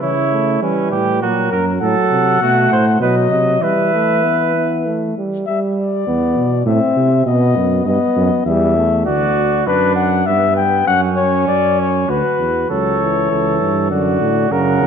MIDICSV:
0, 0, Header, 1, 5, 480
1, 0, Start_track
1, 0, Key_signature, 1, "minor"
1, 0, Tempo, 603622
1, 14, Time_signature, 3, 2, 24, 8
1, 11824, End_track
2, 0, Start_track
2, 0, Title_t, "Cornet"
2, 0, Program_c, 0, 56
2, 23, Note_on_c, 0, 73, 76
2, 487, Note_off_c, 0, 73, 0
2, 501, Note_on_c, 0, 71, 63
2, 964, Note_off_c, 0, 71, 0
2, 976, Note_on_c, 0, 70, 72
2, 1433, Note_off_c, 0, 70, 0
2, 1437, Note_on_c, 0, 78, 88
2, 2377, Note_off_c, 0, 78, 0
2, 2400, Note_on_c, 0, 75, 81
2, 2878, Note_on_c, 0, 76, 89
2, 2890, Note_off_c, 0, 75, 0
2, 4101, Note_off_c, 0, 76, 0
2, 4343, Note_on_c, 0, 76, 78
2, 4453, Note_off_c, 0, 76, 0
2, 4587, Note_on_c, 0, 74, 76
2, 5289, Note_off_c, 0, 74, 0
2, 5302, Note_on_c, 0, 76, 81
2, 5769, Note_off_c, 0, 76, 0
2, 5783, Note_on_c, 0, 75, 87
2, 6244, Note_off_c, 0, 75, 0
2, 6249, Note_on_c, 0, 75, 81
2, 6718, Note_off_c, 0, 75, 0
2, 6726, Note_on_c, 0, 76, 76
2, 7197, Note_off_c, 0, 76, 0
2, 7205, Note_on_c, 0, 74, 86
2, 7675, Note_off_c, 0, 74, 0
2, 7692, Note_on_c, 0, 71, 97
2, 7916, Note_off_c, 0, 71, 0
2, 7921, Note_on_c, 0, 78, 82
2, 8163, Note_on_c, 0, 76, 92
2, 8175, Note_off_c, 0, 78, 0
2, 8402, Note_off_c, 0, 76, 0
2, 8406, Note_on_c, 0, 79, 91
2, 8642, Note_off_c, 0, 79, 0
2, 8648, Note_on_c, 0, 78, 104
2, 8756, Note_off_c, 0, 78, 0
2, 8880, Note_on_c, 0, 73, 92
2, 9121, Note_off_c, 0, 73, 0
2, 9130, Note_on_c, 0, 74, 88
2, 9384, Note_on_c, 0, 73, 78
2, 9396, Note_off_c, 0, 74, 0
2, 9625, Note_on_c, 0, 71, 92
2, 9637, Note_off_c, 0, 73, 0
2, 10101, Note_off_c, 0, 71, 0
2, 10105, Note_on_c, 0, 73, 84
2, 11037, Note_off_c, 0, 73, 0
2, 11065, Note_on_c, 0, 74, 77
2, 11532, Note_off_c, 0, 74, 0
2, 11547, Note_on_c, 0, 78, 85
2, 11824, Note_off_c, 0, 78, 0
2, 11824, End_track
3, 0, Start_track
3, 0, Title_t, "Flugelhorn"
3, 0, Program_c, 1, 56
3, 10, Note_on_c, 1, 64, 85
3, 481, Note_off_c, 1, 64, 0
3, 499, Note_on_c, 1, 61, 77
3, 722, Note_off_c, 1, 61, 0
3, 727, Note_on_c, 1, 67, 82
3, 962, Note_off_c, 1, 67, 0
3, 971, Note_on_c, 1, 66, 86
3, 1202, Note_off_c, 1, 66, 0
3, 1208, Note_on_c, 1, 70, 80
3, 1315, Note_off_c, 1, 70, 0
3, 1446, Note_on_c, 1, 69, 99
3, 1913, Note_off_c, 1, 69, 0
3, 1923, Note_on_c, 1, 66, 88
3, 2157, Note_off_c, 1, 66, 0
3, 2166, Note_on_c, 1, 72, 84
3, 2273, Note_off_c, 1, 72, 0
3, 2397, Note_on_c, 1, 71, 81
3, 2506, Note_off_c, 1, 71, 0
3, 2635, Note_on_c, 1, 75, 76
3, 2880, Note_on_c, 1, 71, 90
3, 2892, Note_off_c, 1, 75, 0
3, 4102, Note_off_c, 1, 71, 0
3, 7206, Note_on_c, 1, 66, 92
3, 7690, Note_on_c, 1, 62, 85
3, 7702, Note_off_c, 1, 66, 0
3, 8162, Note_off_c, 1, 62, 0
3, 8167, Note_on_c, 1, 59, 73
3, 8645, Note_on_c, 1, 61, 91
3, 8657, Note_off_c, 1, 59, 0
3, 9617, Note_on_c, 1, 66, 70
3, 9628, Note_off_c, 1, 61, 0
3, 10091, Note_off_c, 1, 66, 0
3, 10096, Note_on_c, 1, 69, 73
3, 10552, Note_off_c, 1, 69, 0
3, 10580, Note_on_c, 1, 69, 72
3, 11053, Note_off_c, 1, 69, 0
3, 11060, Note_on_c, 1, 66, 77
3, 11543, Note_on_c, 1, 70, 96
3, 11555, Note_off_c, 1, 66, 0
3, 11824, Note_off_c, 1, 70, 0
3, 11824, End_track
4, 0, Start_track
4, 0, Title_t, "Trombone"
4, 0, Program_c, 2, 57
4, 14, Note_on_c, 2, 52, 63
4, 121, Note_off_c, 2, 52, 0
4, 263, Note_on_c, 2, 57, 67
4, 494, Note_on_c, 2, 55, 68
4, 506, Note_off_c, 2, 57, 0
4, 969, Note_off_c, 2, 55, 0
4, 977, Note_on_c, 2, 54, 69
4, 1439, Note_off_c, 2, 54, 0
4, 1451, Note_on_c, 2, 54, 80
4, 1915, Note_off_c, 2, 54, 0
4, 1929, Note_on_c, 2, 57, 84
4, 2394, Note_off_c, 2, 57, 0
4, 2399, Note_on_c, 2, 54, 78
4, 2874, Note_off_c, 2, 54, 0
4, 2887, Note_on_c, 2, 55, 70
4, 3125, Note_off_c, 2, 55, 0
4, 3138, Note_on_c, 2, 57, 71
4, 3376, Note_on_c, 2, 59, 65
4, 3388, Note_off_c, 2, 57, 0
4, 3615, Note_off_c, 2, 59, 0
4, 3620, Note_on_c, 2, 59, 57
4, 3866, Note_on_c, 2, 57, 67
4, 3878, Note_off_c, 2, 59, 0
4, 4107, Note_off_c, 2, 57, 0
4, 4116, Note_on_c, 2, 55, 61
4, 4349, Note_off_c, 2, 55, 0
4, 4357, Note_on_c, 2, 55, 74
4, 4800, Note_off_c, 2, 55, 0
4, 4831, Note_on_c, 2, 59, 84
4, 5173, Note_off_c, 2, 59, 0
4, 5308, Note_on_c, 2, 60, 79
4, 5772, Note_off_c, 2, 60, 0
4, 5782, Note_on_c, 2, 59, 77
4, 6246, Note_off_c, 2, 59, 0
4, 6264, Note_on_c, 2, 59, 87
4, 6726, Note_off_c, 2, 59, 0
4, 6735, Note_on_c, 2, 55, 87
4, 6968, Note_off_c, 2, 55, 0
4, 6974, Note_on_c, 2, 57, 79
4, 7206, Note_off_c, 2, 57, 0
4, 10100, Note_on_c, 2, 54, 59
4, 10339, Note_on_c, 2, 52, 70
4, 10351, Note_off_c, 2, 54, 0
4, 11064, Note_on_c, 2, 50, 75
4, 11076, Note_off_c, 2, 52, 0
4, 11526, Note_off_c, 2, 50, 0
4, 11531, Note_on_c, 2, 49, 86
4, 11824, Note_off_c, 2, 49, 0
4, 11824, End_track
5, 0, Start_track
5, 0, Title_t, "Bass trombone"
5, 0, Program_c, 3, 57
5, 7, Note_on_c, 3, 49, 63
5, 479, Note_off_c, 3, 49, 0
5, 490, Note_on_c, 3, 52, 60
5, 731, Note_on_c, 3, 45, 68
5, 743, Note_off_c, 3, 52, 0
5, 970, Note_on_c, 3, 46, 76
5, 982, Note_off_c, 3, 45, 0
5, 1207, Note_off_c, 3, 46, 0
5, 1211, Note_on_c, 3, 42, 72
5, 1440, Note_off_c, 3, 42, 0
5, 1444, Note_on_c, 3, 45, 71
5, 1552, Note_off_c, 3, 45, 0
5, 1678, Note_on_c, 3, 48, 68
5, 1910, Note_off_c, 3, 48, 0
5, 1915, Note_on_c, 3, 47, 75
5, 2149, Note_off_c, 3, 47, 0
5, 2154, Note_on_c, 3, 45, 76
5, 2382, Note_off_c, 3, 45, 0
5, 2386, Note_on_c, 3, 47, 81
5, 2625, Note_off_c, 3, 47, 0
5, 2630, Note_on_c, 3, 48, 74
5, 2868, Note_off_c, 3, 48, 0
5, 2873, Note_on_c, 3, 52, 71
5, 4074, Note_off_c, 3, 52, 0
5, 4826, Note_on_c, 3, 40, 75
5, 5058, Note_on_c, 3, 47, 84
5, 5070, Note_off_c, 3, 40, 0
5, 5292, Note_off_c, 3, 47, 0
5, 5297, Note_on_c, 3, 45, 97
5, 5405, Note_off_c, 3, 45, 0
5, 5537, Note_on_c, 3, 48, 89
5, 5770, Note_off_c, 3, 48, 0
5, 5775, Note_on_c, 3, 47, 89
5, 6014, Note_on_c, 3, 42, 82
5, 6026, Note_off_c, 3, 47, 0
5, 6242, Note_off_c, 3, 42, 0
5, 6247, Note_on_c, 3, 43, 78
5, 6355, Note_off_c, 3, 43, 0
5, 6490, Note_on_c, 3, 42, 90
5, 6598, Note_off_c, 3, 42, 0
5, 6731, Note_on_c, 3, 40, 97
5, 7200, Note_off_c, 3, 40, 0
5, 7211, Note_on_c, 3, 38, 78
5, 7678, Note_off_c, 3, 38, 0
5, 7689, Note_on_c, 3, 42, 73
5, 8166, Note_on_c, 3, 43, 86
5, 8178, Note_off_c, 3, 42, 0
5, 8639, Note_off_c, 3, 43, 0
5, 8643, Note_on_c, 3, 42, 73
5, 9119, Note_off_c, 3, 42, 0
5, 9127, Note_on_c, 3, 42, 74
5, 9604, Note_off_c, 3, 42, 0
5, 9609, Note_on_c, 3, 38, 69
5, 9719, Note_off_c, 3, 38, 0
5, 9852, Note_on_c, 3, 40, 66
5, 10090, Note_off_c, 3, 40, 0
5, 10095, Note_on_c, 3, 37, 66
5, 10551, Note_off_c, 3, 37, 0
5, 10583, Note_on_c, 3, 37, 71
5, 10820, Note_off_c, 3, 37, 0
5, 10826, Note_on_c, 3, 43, 81
5, 11062, Note_on_c, 3, 42, 89
5, 11074, Note_off_c, 3, 43, 0
5, 11290, Note_off_c, 3, 42, 0
5, 11295, Note_on_c, 3, 45, 82
5, 11531, Note_off_c, 3, 45, 0
5, 11535, Note_on_c, 3, 42, 69
5, 11772, Note_off_c, 3, 42, 0
5, 11780, Note_on_c, 3, 40, 75
5, 11824, Note_off_c, 3, 40, 0
5, 11824, End_track
0, 0, End_of_file